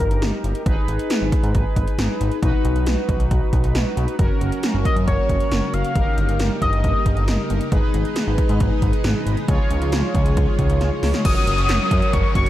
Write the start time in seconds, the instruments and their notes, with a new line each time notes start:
Already playing: analog polysynth D#4 G4 A#4, analog synth lead A#4, downlifter
0.00 kick, closed hi-hat
0.11 analog synth bass G1, closed hi-hat
0.22 analog synth bass G1, snare, closed hi-hat
0.44 analog synth bass G1, closed hi-hat
0.55 closed hi-hat
0.66 analog synth bass G#1, analog polysynth D#4 G#4 B4, kick, closed hi-hat
0.88 analog synth bass G#1, closed hi-hat
0.99 closed hi-hat
1.10 snare, closed hi-hat
1.21 analog synth bass G#1
1.32 kick, closed hi-hat
1.43 analog synth bass G#2, closed hi-hat
1.55 analog synth bass G#1, kick, closed hi-hat
1.76 analog synth bass G#1, kick, closed hi-hat
1.88 closed hi-hat
1.98 analog synth bass G#1, snare, closed hi-hat
2.21 analog synth bass G#1, closed hi-hat
2.32 closed hi-hat
2.43 analog synth bass B1, analog polysynth D#4 F#4 B4, kick, closed hi-hat
2.65 analog synth bass B1, closed hi-hat
2.76 analog synth bass B1, closed hi-hat
2.86 analog synth bass B1, snare, closed hi-hat
3.09 analog synth bass B1, kick, closed hi-hat
3.20 analog synth bass B1, closed hi-hat
3.31 analog synth bass B1, kick, closed hi-hat
3.53 analog synth bass B1, kick, closed hi-hat
3.64 analog synth bass B1, closed hi-hat
3.75 analog synth bass B1, snare, closed hi-hat
3.97 analog synth bass B1, closed hi-hat
4.08 closed hi-hat
4.19 analog synth bass F#1, string machine C#3 F#3 A#3 F#4, analog polysynth C#4 F#4 A#4, kick, closed hi-hat
4.41 analog synth bass F#1, closed hi-hat
4.52 closed hi-hat
4.63 snare, closed hi-hat
4.74 analog synth bass F#1
4.85 analog synth lead D#5, kick, closed hi-hat
4.96 analog synth bass F#2, closed hi-hat
5.07 analog synth bass F#1, analog synth lead C#5, kick, closed hi-hat
5.29 analog synth bass F#1, kick, closed hi-hat
5.40 closed hi-hat
5.51 analog synth bass F#1, snare, closed hi-hat
5.73 analog synth bass F#1, analog synth lead F5, closed hi-hat
5.85 closed hi-hat
5.95 analog synth bass G1, string machine G3 A#3 D#4, analog polysynth D#4 G4 A#4, kick, closed hi-hat
6.18 analog synth bass G1, closed hi-hat
6.29 analog synth bass G1, closed hi-hat
6.39 analog synth bass G1, snare, closed hi-hat
6.62 analog synth bass G1, analog synth lead D#5, kick, closed hi-hat
6.73 analog synth bass G1, closed hi-hat
6.84 analog synth bass G1, kick, closed hi-hat
7.06 analog synth bass G1, kick, closed hi-hat
7.17 analog synth bass G1, closed hi-hat
7.28 analog synth bass G1, snare, closed hi-hat
7.50 analog synth bass G1, closed hi-hat
7.61 closed hi-hat
7.72 analog synth bass G#1, string machine B2 D#3 G#3, analog polysynth D#4 G#4 B4, kick, closed hi-hat
7.94 analog synth bass G#1, closed hi-hat
8.05 closed hi-hat
8.16 snare, closed hi-hat
8.27 analog synth bass G#1
8.38 kick, closed hi-hat
8.49 analog synth bass G#2, closed hi-hat
8.60 analog synth bass G#1, kick, closed hi-hat
8.82 analog synth bass G#1, kick, closed hi-hat
8.93 closed hi-hat
9.04 analog synth bass G#1, snare, closed hi-hat
9.26 analog synth bass G#1, closed hi-hat
9.37 closed hi-hat
9.48 analog synth bass C#2, string machine C#3 F3, analog polysynth F4 G#4 C#5, kick, closed hi-hat
9.71 analog synth bass C#2, closed hi-hat
9.82 analog synth bass C#2, closed hi-hat
9.92 analog synth bass C#2, snare, closed hi-hat
10.15 analog synth bass C#2, kick, closed hi-hat
10.26 analog synth bass C#2, closed hi-hat
10.37 analog synth bass C#2, kick, closed hi-hat
10.59 analog synth bass C#2, kick, closed hi-hat
10.70 analog synth bass C#2, closed hi-hat
10.81 analog synth bass C#2, snare, closed hi-hat
11.03 analog synth bass C#2, snare, open hi-hat
11.14 snare, closed hi-hat
11.25 analog synth bass F#1, string machine C#3 F#3 C#4 F#4, analog polysynth F#4 A#4 C#5, analog synth lead D#6, kick, closed hi-hat, crash, downlifter
11.47 analog synth bass F#1, closed hi-hat
11.58 analog synth bass F#1, closed hi-hat
11.69 analog synth bass F#1, snare, clap, closed hi-hat
11.91 analog synth bass F#2, kick, closed hi-hat
12.02 closed hi-hat
12.13 analog synth bass F#1, analog synth lead C#6, kick, closed hi-hat
12.35 analog synth bass F#1, analog synth lead C#6, kick, closed hi-hat
12.46 closed hi-hat